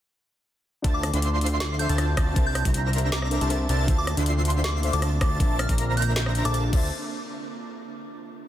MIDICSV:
0, 0, Header, 1, 8, 480
1, 0, Start_track
1, 0, Key_signature, -1, "minor"
1, 0, Tempo, 379747
1, 1066, Time_signature, 4, 2, 24, 8
1, 10719, End_track
2, 0, Start_track
2, 0, Title_t, "Synth bell"
2, 0, Program_c, 0, 98
2, 1190, Note_on_c, 0, 86, 91
2, 1344, Note_off_c, 0, 86, 0
2, 2023, Note_on_c, 0, 86, 91
2, 2187, Note_off_c, 0, 86, 0
2, 2265, Note_on_c, 0, 91, 91
2, 2428, Note_off_c, 0, 91, 0
2, 3116, Note_on_c, 0, 91, 92
2, 3187, Note_off_c, 0, 91, 0
2, 3229, Note_on_c, 0, 91, 77
2, 3309, Note_off_c, 0, 91, 0
2, 3946, Note_on_c, 0, 86, 97
2, 4314, Note_off_c, 0, 86, 0
2, 5034, Note_on_c, 0, 86, 90
2, 5186, Note_off_c, 0, 86, 0
2, 5865, Note_on_c, 0, 86, 98
2, 6029, Note_off_c, 0, 86, 0
2, 6235, Note_on_c, 0, 86, 98
2, 6877, Note_off_c, 0, 86, 0
2, 7066, Note_on_c, 0, 89, 93
2, 7229, Note_off_c, 0, 89, 0
2, 7547, Note_on_c, 0, 91, 91
2, 7709, Note_off_c, 0, 91, 0
2, 8155, Note_on_c, 0, 86, 93
2, 8226, Note_off_c, 0, 86, 0
2, 8268, Note_on_c, 0, 86, 79
2, 8349, Note_off_c, 0, 86, 0
2, 10719, End_track
3, 0, Start_track
3, 0, Title_t, "Digital synth lead"
3, 0, Program_c, 1, 84
3, 1067, Note_on_c, 1, 81, 112
3, 1284, Note_off_c, 1, 81, 0
3, 1435, Note_on_c, 1, 84, 111
3, 2364, Note_off_c, 1, 84, 0
3, 2394, Note_on_c, 1, 81, 87
3, 2609, Note_off_c, 1, 81, 0
3, 2746, Note_on_c, 1, 81, 98
3, 2959, Note_off_c, 1, 81, 0
3, 2985, Note_on_c, 1, 81, 109
3, 3204, Note_off_c, 1, 81, 0
3, 3353, Note_on_c, 1, 82, 109
3, 4283, Note_off_c, 1, 82, 0
3, 4314, Note_on_c, 1, 81, 86
3, 4529, Note_off_c, 1, 81, 0
3, 4666, Note_on_c, 1, 81, 101
3, 4879, Note_off_c, 1, 81, 0
3, 4905, Note_on_c, 1, 81, 109
3, 5124, Note_off_c, 1, 81, 0
3, 5273, Note_on_c, 1, 84, 111
3, 6203, Note_off_c, 1, 84, 0
3, 6235, Note_on_c, 1, 81, 88
3, 6449, Note_off_c, 1, 81, 0
3, 6586, Note_on_c, 1, 81, 100
3, 6799, Note_off_c, 1, 81, 0
3, 6827, Note_on_c, 1, 81, 110
3, 7044, Note_off_c, 1, 81, 0
3, 7194, Note_on_c, 1, 82, 109
3, 8123, Note_off_c, 1, 82, 0
3, 8153, Note_on_c, 1, 81, 89
3, 8368, Note_off_c, 1, 81, 0
3, 8506, Note_on_c, 1, 81, 94
3, 8688, Note_off_c, 1, 81, 0
3, 10719, End_track
4, 0, Start_track
4, 0, Title_t, "Supersaw synth"
4, 0, Program_c, 2, 81
4, 1065, Note_on_c, 2, 62, 98
4, 1065, Note_on_c, 2, 65, 90
4, 1065, Note_on_c, 2, 72, 90
4, 1065, Note_on_c, 2, 76, 93
4, 1066, Note_on_c, 2, 81, 111
4, 1283, Note_off_c, 2, 65, 0
4, 1283, Note_off_c, 2, 72, 0
4, 1283, Note_off_c, 2, 76, 0
4, 1284, Note_off_c, 2, 62, 0
4, 1284, Note_off_c, 2, 81, 0
4, 1433, Note_on_c, 2, 62, 96
4, 1433, Note_on_c, 2, 65, 85
4, 1433, Note_on_c, 2, 72, 90
4, 1434, Note_on_c, 2, 76, 89
4, 1434, Note_on_c, 2, 84, 107
4, 2363, Note_off_c, 2, 62, 0
4, 2363, Note_off_c, 2, 65, 0
4, 2363, Note_off_c, 2, 72, 0
4, 2363, Note_off_c, 2, 76, 0
4, 2363, Note_off_c, 2, 84, 0
4, 2393, Note_on_c, 2, 62, 78
4, 2393, Note_on_c, 2, 65, 74
4, 2393, Note_on_c, 2, 72, 74
4, 2394, Note_on_c, 2, 76, 72
4, 2394, Note_on_c, 2, 81, 89
4, 2608, Note_off_c, 2, 62, 0
4, 2608, Note_off_c, 2, 72, 0
4, 2609, Note_off_c, 2, 65, 0
4, 2609, Note_off_c, 2, 76, 0
4, 2609, Note_off_c, 2, 81, 0
4, 2745, Note_on_c, 2, 81, 100
4, 2746, Note_on_c, 2, 62, 93
4, 2746, Note_on_c, 2, 65, 82
4, 2746, Note_on_c, 2, 72, 87
4, 2746, Note_on_c, 2, 76, 83
4, 2959, Note_off_c, 2, 62, 0
4, 2959, Note_off_c, 2, 65, 0
4, 2959, Note_off_c, 2, 72, 0
4, 2959, Note_off_c, 2, 76, 0
4, 2959, Note_off_c, 2, 81, 0
4, 2987, Note_on_c, 2, 62, 99
4, 2987, Note_on_c, 2, 72, 94
4, 2987, Note_on_c, 2, 76, 93
4, 2987, Note_on_c, 2, 81, 109
4, 2988, Note_on_c, 2, 70, 91
4, 3204, Note_off_c, 2, 62, 0
4, 3204, Note_off_c, 2, 72, 0
4, 3204, Note_off_c, 2, 81, 0
4, 3205, Note_off_c, 2, 70, 0
4, 3205, Note_off_c, 2, 76, 0
4, 3352, Note_on_c, 2, 62, 97
4, 3352, Note_on_c, 2, 70, 89
4, 3352, Note_on_c, 2, 76, 87
4, 3352, Note_on_c, 2, 82, 104
4, 3353, Note_on_c, 2, 72, 87
4, 4282, Note_off_c, 2, 62, 0
4, 4282, Note_off_c, 2, 70, 0
4, 4282, Note_off_c, 2, 76, 0
4, 4282, Note_off_c, 2, 82, 0
4, 4283, Note_off_c, 2, 72, 0
4, 4314, Note_on_c, 2, 62, 78
4, 4314, Note_on_c, 2, 70, 74
4, 4314, Note_on_c, 2, 72, 72
4, 4314, Note_on_c, 2, 76, 70
4, 4314, Note_on_c, 2, 81, 84
4, 4529, Note_off_c, 2, 62, 0
4, 4529, Note_off_c, 2, 70, 0
4, 4529, Note_off_c, 2, 72, 0
4, 4529, Note_off_c, 2, 76, 0
4, 4529, Note_off_c, 2, 81, 0
4, 4666, Note_on_c, 2, 62, 92
4, 4666, Note_on_c, 2, 70, 82
4, 4666, Note_on_c, 2, 72, 87
4, 4666, Note_on_c, 2, 81, 103
4, 4667, Note_on_c, 2, 76, 84
4, 4879, Note_off_c, 2, 62, 0
4, 4879, Note_off_c, 2, 70, 0
4, 4879, Note_off_c, 2, 72, 0
4, 4879, Note_off_c, 2, 76, 0
4, 4879, Note_off_c, 2, 81, 0
4, 4906, Note_on_c, 2, 62, 98
4, 4906, Note_on_c, 2, 72, 93
4, 4906, Note_on_c, 2, 76, 90
4, 4907, Note_on_c, 2, 65, 91
4, 4907, Note_on_c, 2, 81, 110
4, 5124, Note_off_c, 2, 62, 0
4, 5124, Note_off_c, 2, 65, 0
4, 5124, Note_off_c, 2, 72, 0
4, 5124, Note_off_c, 2, 76, 0
4, 5124, Note_off_c, 2, 81, 0
4, 5274, Note_on_c, 2, 62, 94
4, 5274, Note_on_c, 2, 72, 89
4, 5274, Note_on_c, 2, 76, 89
4, 5274, Note_on_c, 2, 84, 109
4, 5275, Note_on_c, 2, 65, 87
4, 6203, Note_off_c, 2, 62, 0
4, 6203, Note_off_c, 2, 72, 0
4, 6203, Note_off_c, 2, 76, 0
4, 6203, Note_off_c, 2, 84, 0
4, 6204, Note_off_c, 2, 65, 0
4, 6233, Note_on_c, 2, 65, 71
4, 6233, Note_on_c, 2, 72, 72
4, 6233, Note_on_c, 2, 76, 73
4, 6234, Note_on_c, 2, 62, 81
4, 6234, Note_on_c, 2, 81, 87
4, 6448, Note_off_c, 2, 65, 0
4, 6448, Note_off_c, 2, 72, 0
4, 6448, Note_off_c, 2, 76, 0
4, 6449, Note_off_c, 2, 62, 0
4, 6449, Note_off_c, 2, 81, 0
4, 6585, Note_on_c, 2, 76, 84
4, 6586, Note_on_c, 2, 62, 90
4, 6586, Note_on_c, 2, 65, 84
4, 6586, Note_on_c, 2, 72, 84
4, 6586, Note_on_c, 2, 81, 100
4, 6799, Note_off_c, 2, 62, 0
4, 6799, Note_off_c, 2, 65, 0
4, 6799, Note_off_c, 2, 72, 0
4, 6799, Note_off_c, 2, 76, 0
4, 6799, Note_off_c, 2, 81, 0
4, 6825, Note_on_c, 2, 62, 102
4, 6825, Note_on_c, 2, 81, 112
4, 6826, Note_on_c, 2, 72, 92
4, 6826, Note_on_c, 2, 76, 91
4, 6827, Note_on_c, 2, 70, 91
4, 7044, Note_off_c, 2, 62, 0
4, 7044, Note_off_c, 2, 70, 0
4, 7044, Note_off_c, 2, 72, 0
4, 7044, Note_off_c, 2, 76, 0
4, 7044, Note_off_c, 2, 81, 0
4, 7192, Note_on_c, 2, 70, 85
4, 7193, Note_on_c, 2, 62, 94
4, 7193, Note_on_c, 2, 72, 89
4, 7193, Note_on_c, 2, 82, 109
4, 7194, Note_on_c, 2, 76, 86
4, 8122, Note_off_c, 2, 62, 0
4, 8122, Note_off_c, 2, 70, 0
4, 8122, Note_off_c, 2, 82, 0
4, 8123, Note_off_c, 2, 72, 0
4, 8123, Note_off_c, 2, 76, 0
4, 8153, Note_on_c, 2, 62, 81
4, 8153, Note_on_c, 2, 81, 91
4, 8154, Note_on_c, 2, 70, 71
4, 8154, Note_on_c, 2, 72, 75
4, 8154, Note_on_c, 2, 76, 74
4, 8368, Note_off_c, 2, 62, 0
4, 8369, Note_off_c, 2, 70, 0
4, 8369, Note_off_c, 2, 72, 0
4, 8369, Note_off_c, 2, 76, 0
4, 8369, Note_off_c, 2, 81, 0
4, 8504, Note_on_c, 2, 65, 81
4, 8505, Note_on_c, 2, 62, 89
4, 8505, Note_on_c, 2, 72, 84
4, 8505, Note_on_c, 2, 76, 82
4, 8505, Note_on_c, 2, 81, 94
4, 8686, Note_off_c, 2, 65, 0
4, 8687, Note_off_c, 2, 62, 0
4, 8687, Note_off_c, 2, 72, 0
4, 8687, Note_off_c, 2, 76, 0
4, 8687, Note_off_c, 2, 81, 0
4, 10719, End_track
5, 0, Start_track
5, 0, Title_t, "Synth pluck"
5, 0, Program_c, 3, 84
5, 1040, Note_on_c, 3, 62, 78
5, 1053, Note_on_c, 3, 65, 73
5, 1066, Note_on_c, 3, 69, 74
5, 1078, Note_on_c, 3, 72, 73
5, 1092, Note_on_c, 3, 76, 90
5, 2226, Note_off_c, 3, 62, 0
5, 2233, Note_off_c, 3, 65, 0
5, 2239, Note_off_c, 3, 69, 0
5, 2242, Note_on_c, 3, 62, 88
5, 2245, Note_off_c, 3, 72, 0
5, 2252, Note_off_c, 3, 76, 0
5, 2254, Note_on_c, 3, 65, 81
5, 2267, Note_on_c, 3, 69, 84
5, 2279, Note_on_c, 3, 72, 82
5, 2292, Note_on_c, 3, 76, 105
5, 2947, Note_off_c, 3, 62, 0
5, 2953, Note_off_c, 3, 65, 0
5, 2960, Note_off_c, 3, 69, 0
5, 2960, Note_on_c, 3, 62, 80
5, 2966, Note_off_c, 3, 72, 0
5, 2972, Note_off_c, 3, 76, 0
5, 2986, Note_on_c, 3, 70, 74
5, 2998, Note_on_c, 3, 72, 72
5, 3010, Note_on_c, 3, 76, 90
5, 4146, Note_off_c, 3, 62, 0
5, 4159, Note_off_c, 3, 70, 0
5, 4165, Note_off_c, 3, 72, 0
5, 4171, Note_off_c, 3, 76, 0
5, 4174, Note_on_c, 3, 62, 88
5, 4181, Note_on_c, 3, 69, 82
5, 4187, Note_on_c, 3, 70, 77
5, 4193, Note_on_c, 3, 72, 80
5, 4200, Note_on_c, 3, 76, 97
5, 4393, Note_off_c, 3, 62, 0
5, 4396, Note_off_c, 3, 69, 0
5, 4399, Note_off_c, 3, 70, 0
5, 4403, Note_off_c, 3, 72, 0
5, 4406, Note_off_c, 3, 76, 0
5, 4412, Note_on_c, 3, 62, 98
5, 4418, Note_on_c, 3, 69, 88
5, 4424, Note_on_c, 3, 70, 93
5, 4432, Note_on_c, 3, 72, 92
5, 4437, Note_on_c, 3, 76, 109
5, 4515, Note_off_c, 3, 62, 0
5, 4518, Note_off_c, 3, 69, 0
5, 4521, Note_off_c, 3, 70, 0
5, 4525, Note_off_c, 3, 72, 0
5, 4528, Note_off_c, 3, 76, 0
5, 4881, Note_on_c, 3, 62, 81
5, 4894, Note_on_c, 3, 65, 73
5, 4907, Note_on_c, 3, 69, 73
5, 4919, Note_on_c, 3, 72, 72
5, 4932, Note_on_c, 3, 76, 90
5, 6067, Note_off_c, 3, 62, 0
5, 6073, Note_off_c, 3, 65, 0
5, 6079, Note_off_c, 3, 69, 0
5, 6081, Note_on_c, 3, 62, 94
5, 6085, Note_off_c, 3, 72, 0
5, 6092, Note_off_c, 3, 76, 0
5, 6093, Note_on_c, 3, 65, 86
5, 6106, Note_on_c, 3, 69, 84
5, 6119, Note_on_c, 3, 72, 84
5, 6132, Note_on_c, 3, 76, 103
5, 6786, Note_off_c, 3, 62, 0
5, 6793, Note_off_c, 3, 65, 0
5, 6799, Note_off_c, 3, 69, 0
5, 6801, Note_on_c, 3, 62, 80
5, 6806, Note_off_c, 3, 72, 0
5, 6812, Note_off_c, 3, 76, 0
5, 6826, Note_on_c, 3, 70, 75
5, 6839, Note_on_c, 3, 72, 77
5, 6852, Note_on_c, 3, 76, 91
5, 7987, Note_off_c, 3, 62, 0
5, 7999, Note_off_c, 3, 70, 0
5, 8005, Note_off_c, 3, 72, 0
5, 8012, Note_off_c, 3, 76, 0
5, 8139, Note_on_c, 3, 62, 85
5, 8146, Note_on_c, 3, 69, 80
5, 8152, Note_on_c, 3, 70, 79
5, 8158, Note_on_c, 3, 72, 77
5, 8164, Note_on_c, 3, 76, 96
5, 8285, Note_off_c, 3, 62, 0
5, 8288, Note_off_c, 3, 69, 0
5, 8291, Note_off_c, 3, 70, 0
5, 8294, Note_off_c, 3, 72, 0
5, 8297, Note_off_c, 3, 76, 0
5, 8467, Note_on_c, 3, 62, 91
5, 8487, Note_on_c, 3, 65, 83
5, 8504, Note_on_c, 3, 69, 84
5, 8524, Note_on_c, 3, 72, 83
5, 8543, Note_on_c, 3, 76, 104
5, 8667, Note_off_c, 3, 62, 0
5, 8677, Note_off_c, 3, 65, 0
5, 8687, Note_off_c, 3, 69, 0
5, 8697, Note_off_c, 3, 72, 0
5, 8707, Note_off_c, 3, 76, 0
5, 10719, End_track
6, 0, Start_track
6, 0, Title_t, "Ambient pad"
6, 0, Program_c, 4, 92
6, 1068, Note_on_c, 4, 50, 82
6, 1068, Note_on_c, 4, 60, 73
6, 1068, Note_on_c, 4, 65, 90
6, 1069, Note_on_c, 4, 76, 71
6, 2968, Note_off_c, 4, 50, 0
6, 2968, Note_off_c, 4, 60, 0
6, 2968, Note_off_c, 4, 65, 0
6, 2990, Note_on_c, 4, 48, 82
6, 2990, Note_on_c, 4, 58, 77
6, 2990, Note_on_c, 4, 62, 76
6, 4869, Note_off_c, 4, 76, 0
6, 4889, Note_off_c, 4, 48, 0
6, 4889, Note_off_c, 4, 58, 0
6, 4889, Note_off_c, 4, 62, 0
6, 4907, Note_on_c, 4, 50, 79
6, 4907, Note_on_c, 4, 65, 86
6, 4907, Note_on_c, 4, 76, 75
6, 4909, Note_on_c, 4, 60, 73
6, 6807, Note_off_c, 4, 50, 0
6, 6807, Note_off_c, 4, 65, 0
6, 6807, Note_off_c, 4, 76, 0
6, 6808, Note_off_c, 4, 60, 0
6, 6827, Note_on_c, 4, 58, 75
6, 6829, Note_on_c, 4, 62, 89
6, 8490, Note_off_c, 4, 58, 0
6, 8490, Note_off_c, 4, 62, 0
6, 10719, End_track
7, 0, Start_track
7, 0, Title_t, "Analog synth bass"
7, 0, Program_c, 5, 38
7, 1066, Note_on_c, 5, 38, 96
7, 1408, Note_off_c, 5, 38, 0
7, 1434, Note_on_c, 5, 38, 101
7, 2368, Note_off_c, 5, 38, 0
7, 2394, Note_on_c, 5, 38, 105
7, 2724, Note_off_c, 5, 38, 0
7, 2745, Note_on_c, 5, 38, 92
7, 2963, Note_off_c, 5, 38, 0
7, 2985, Note_on_c, 5, 36, 92
7, 3328, Note_off_c, 5, 36, 0
7, 3353, Note_on_c, 5, 36, 97
7, 4288, Note_off_c, 5, 36, 0
7, 4313, Note_on_c, 5, 36, 103
7, 4643, Note_off_c, 5, 36, 0
7, 4666, Note_on_c, 5, 36, 98
7, 4906, Note_on_c, 5, 38, 98
7, 4925, Note_off_c, 5, 36, 0
7, 5248, Note_off_c, 5, 38, 0
7, 5274, Note_on_c, 5, 38, 101
7, 6208, Note_off_c, 5, 38, 0
7, 6235, Note_on_c, 5, 38, 99
7, 6564, Note_off_c, 5, 38, 0
7, 6587, Note_on_c, 5, 38, 95
7, 6804, Note_off_c, 5, 38, 0
7, 6826, Note_on_c, 5, 34, 97
7, 7168, Note_off_c, 5, 34, 0
7, 7193, Note_on_c, 5, 34, 103
7, 8128, Note_off_c, 5, 34, 0
7, 8154, Note_on_c, 5, 34, 103
7, 8484, Note_off_c, 5, 34, 0
7, 8505, Note_on_c, 5, 38, 95
7, 8729, Note_off_c, 5, 38, 0
7, 10719, End_track
8, 0, Start_track
8, 0, Title_t, "Drums"
8, 1066, Note_on_c, 9, 36, 119
8, 1066, Note_on_c, 9, 42, 84
8, 1192, Note_off_c, 9, 36, 0
8, 1193, Note_off_c, 9, 42, 0
8, 1307, Note_on_c, 9, 37, 59
8, 1307, Note_on_c, 9, 42, 70
8, 1433, Note_off_c, 9, 37, 0
8, 1433, Note_off_c, 9, 42, 0
8, 1435, Note_on_c, 9, 42, 71
8, 1547, Note_off_c, 9, 42, 0
8, 1547, Note_on_c, 9, 42, 81
8, 1673, Note_off_c, 9, 42, 0
8, 1787, Note_on_c, 9, 42, 52
8, 1851, Note_off_c, 9, 42, 0
8, 1851, Note_on_c, 9, 42, 70
8, 1977, Note_off_c, 9, 42, 0
8, 2026, Note_on_c, 9, 38, 117
8, 2026, Note_on_c, 9, 42, 85
8, 2153, Note_off_c, 9, 38, 0
8, 2153, Note_off_c, 9, 42, 0
8, 2267, Note_on_c, 9, 42, 68
8, 2393, Note_off_c, 9, 42, 0
8, 2394, Note_on_c, 9, 42, 69
8, 2506, Note_off_c, 9, 42, 0
8, 2506, Note_on_c, 9, 37, 59
8, 2506, Note_on_c, 9, 42, 84
8, 2633, Note_off_c, 9, 37, 0
8, 2633, Note_off_c, 9, 42, 0
8, 2746, Note_on_c, 9, 36, 104
8, 2746, Note_on_c, 9, 37, 81
8, 2746, Note_on_c, 9, 42, 67
8, 2872, Note_off_c, 9, 36, 0
8, 2872, Note_off_c, 9, 37, 0
8, 2872, Note_off_c, 9, 42, 0
8, 2985, Note_on_c, 9, 36, 125
8, 2986, Note_on_c, 9, 42, 81
8, 3112, Note_off_c, 9, 36, 0
8, 3112, Note_off_c, 9, 42, 0
8, 3226, Note_on_c, 9, 37, 61
8, 3226, Note_on_c, 9, 42, 68
8, 3352, Note_off_c, 9, 37, 0
8, 3352, Note_off_c, 9, 42, 0
8, 3353, Note_on_c, 9, 36, 66
8, 3354, Note_on_c, 9, 42, 70
8, 3466, Note_off_c, 9, 42, 0
8, 3466, Note_on_c, 9, 42, 79
8, 3480, Note_off_c, 9, 36, 0
8, 3593, Note_off_c, 9, 42, 0
8, 3706, Note_on_c, 9, 42, 48
8, 3771, Note_off_c, 9, 42, 0
8, 3771, Note_on_c, 9, 42, 66
8, 3897, Note_off_c, 9, 42, 0
8, 3946, Note_on_c, 9, 38, 126
8, 3946, Note_on_c, 9, 42, 82
8, 4072, Note_off_c, 9, 38, 0
8, 4072, Note_off_c, 9, 42, 0
8, 4074, Note_on_c, 9, 37, 62
8, 4186, Note_on_c, 9, 42, 67
8, 4200, Note_off_c, 9, 37, 0
8, 4313, Note_off_c, 9, 42, 0
8, 4314, Note_on_c, 9, 42, 65
8, 4426, Note_off_c, 9, 42, 0
8, 4426, Note_on_c, 9, 42, 84
8, 4553, Note_off_c, 9, 42, 0
8, 4667, Note_on_c, 9, 42, 68
8, 4793, Note_off_c, 9, 42, 0
8, 4906, Note_on_c, 9, 36, 122
8, 4906, Note_on_c, 9, 42, 76
8, 5032, Note_off_c, 9, 36, 0
8, 5033, Note_off_c, 9, 42, 0
8, 5148, Note_on_c, 9, 37, 60
8, 5148, Note_on_c, 9, 42, 66
8, 5274, Note_off_c, 9, 37, 0
8, 5274, Note_off_c, 9, 42, 0
8, 5275, Note_on_c, 9, 42, 68
8, 5386, Note_off_c, 9, 42, 0
8, 5386, Note_on_c, 9, 42, 77
8, 5512, Note_off_c, 9, 42, 0
8, 5626, Note_on_c, 9, 42, 48
8, 5690, Note_off_c, 9, 42, 0
8, 5690, Note_on_c, 9, 42, 65
8, 5817, Note_off_c, 9, 42, 0
8, 5867, Note_on_c, 9, 38, 127
8, 5867, Note_on_c, 9, 42, 80
8, 5993, Note_off_c, 9, 38, 0
8, 5993, Note_off_c, 9, 42, 0
8, 6107, Note_on_c, 9, 42, 66
8, 6233, Note_off_c, 9, 42, 0
8, 6235, Note_on_c, 9, 42, 67
8, 6347, Note_off_c, 9, 42, 0
8, 6347, Note_on_c, 9, 37, 63
8, 6347, Note_on_c, 9, 42, 80
8, 6474, Note_off_c, 9, 37, 0
8, 6474, Note_off_c, 9, 42, 0
8, 6586, Note_on_c, 9, 36, 109
8, 6588, Note_on_c, 9, 37, 82
8, 6588, Note_on_c, 9, 42, 64
8, 6713, Note_off_c, 9, 36, 0
8, 6714, Note_off_c, 9, 37, 0
8, 6714, Note_off_c, 9, 42, 0
8, 6826, Note_on_c, 9, 36, 123
8, 6828, Note_on_c, 9, 42, 78
8, 6952, Note_off_c, 9, 36, 0
8, 6955, Note_off_c, 9, 42, 0
8, 7069, Note_on_c, 9, 37, 64
8, 7069, Note_on_c, 9, 42, 62
8, 7194, Note_on_c, 9, 36, 65
8, 7195, Note_off_c, 9, 37, 0
8, 7195, Note_off_c, 9, 42, 0
8, 7195, Note_on_c, 9, 42, 65
8, 7307, Note_off_c, 9, 42, 0
8, 7307, Note_on_c, 9, 42, 76
8, 7320, Note_off_c, 9, 36, 0
8, 7433, Note_off_c, 9, 42, 0
8, 7547, Note_on_c, 9, 42, 49
8, 7611, Note_off_c, 9, 42, 0
8, 7611, Note_on_c, 9, 42, 62
8, 7738, Note_off_c, 9, 42, 0
8, 7787, Note_on_c, 9, 38, 127
8, 7787, Note_on_c, 9, 42, 79
8, 7913, Note_off_c, 9, 38, 0
8, 7913, Note_off_c, 9, 42, 0
8, 7915, Note_on_c, 9, 37, 66
8, 8027, Note_on_c, 9, 42, 65
8, 8042, Note_off_c, 9, 37, 0
8, 8153, Note_off_c, 9, 42, 0
8, 8155, Note_on_c, 9, 42, 62
8, 8267, Note_off_c, 9, 42, 0
8, 8267, Note_on_c, 9, 42, 81
8, 8393, Note_off_c, 9, 42, 0
8, 8506, Note_on_c, 9, 36, 114
8, 8507, Note_on_c, 9, 49, 92
8, 8632, Note_off_c, 9, 36, 0
8, 8633, Note_off_c, 9, 49, 0
8, 10719, End_track
0, 0, End_of_file